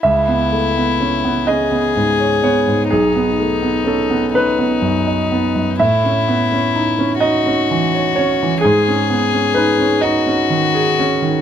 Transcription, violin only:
X:1
M:6/8
L:1/8
Q:3/8=42
K:C#m
V:1 name="Violin"
E3 G3 | D3 D3 | E3 F3 | G3 F3 |]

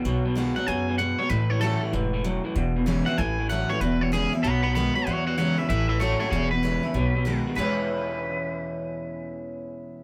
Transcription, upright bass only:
X:1
M:4/4
L:1/8
Q:"Swing" 1/4=192
K:E
V:1 name="Upright bass" clef=bass
B,,,4 F,,4 | A,,,4 E,,,4 | E,,,4 A,,,4 | E,,,4 B,,,4 |
E,,4 A,,,4 | E,,,4 B,,,4 | E,,8- | E,,8 |]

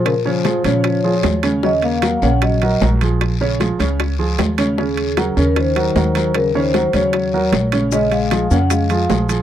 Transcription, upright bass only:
X:1
M:4/4
L:1/8
Q:1/4=153
K:Bbm
V:1 name="Upright bass" clef=bass
B,,3 B,,3 E,,2- | E,,3 B,,,3 B,,,2- | B,,,3 D,,3 E,,2- | E,,3 E,,3 E,,2- |
E,,3 E,,3 B,,,2- | B,,,3 F,,3 B,,,2 |]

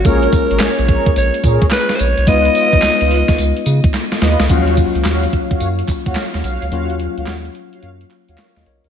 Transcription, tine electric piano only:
X:1
M:4/4
L:1/16
Q:"Swing 16ths" 1/4=108
K:Ebm
V:1 name="Tine electric piano"
z16 | z16 | z16 | z12 [Bd] e [Bd] [GB] |]
V:2 name="Tine electric piano"
[A,B,DF]16 | [A,CEF]16 | [F,G,B,DF]16 | [G,B,DF]16 |]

